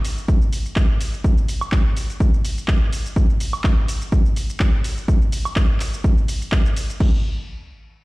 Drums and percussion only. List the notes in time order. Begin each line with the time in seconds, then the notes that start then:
0.05 open hi-hat, shaker
0.18 shaker
0.28 kick, shaker
0.41 shaker
0.53 open hi-hat, shaker
0.66 shaker
0.76 kick, clap, shaker
1.01 open hi-hat, shaker
1.14 shaker
1.24 kick, shaker
1.38 shaker
1.49 open hi-hat, shaker
1.61 high woodblock, shaker
1.72 kick, clap, shaker
1.97 open hi-hat, shaker
2.10 shaker
2.20 kick, shaker
2.34 shaker
2.45 open hi-hat, shaker
2.58 shaker
2.68 kick, clap, shaker
2.93 open hi-hat, shaker
3.06 shaker
3.16 kick, shaker
3.30 shaker
3.40 open hi-hat, shaker
3.53 high woodblock, shaker
3.64 kick, clap, shaker
3.88 open hi-hat, shaker
4.01 shaker
4.12 kick, shaker
4.25 shaker
4.36 open hi-hat, shaker
4.50 shaker
4.60 kick, clap, shaker
4.84 open hi-hat, shaker
4.98 shaker
5.08 kick, shaker
5.22 shaker
5.32 open hi-hat, shaker
5.45 high woodblock, shaker
5.56 kick, clap, shaker
5.80 clap, open hi-hat, shaker
5.94 shaker
6.04 kick, shaker
6.17 shaker
6.28 open hi-hat, shaker
6.42 shaker
6.52 kick, clap, shaker
6.66 shaker
6.77 open hi-hat, shaker
6.90 shaker
7.00 kick, crash